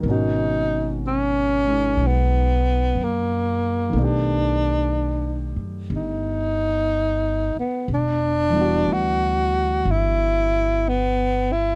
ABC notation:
X:1
M:4/4
L:1/8
Q:"Swing" 1/4=61
K:B
V:1 name="Tenor saxophone"
D2 C2 B,2 A,2 | =D3 z ^D3 B, | [K:Em] D2 F2 E2 B, E |]
V:2 name="Grand piano"
[B,,D,CFA]3 [G,D]4- [G,D] | [D,=A,B,=G=d]8 | [K:Em] z [E,G,B,DF]6- [E,G,B,DF] |]
V:3 name="Upright bass" clef=bass
G,,,4 B,,,2 F,,2 | B,,,3 F,, =G,,,3 z | [K:Em] E,,,2 D,,2 G,,,4 |]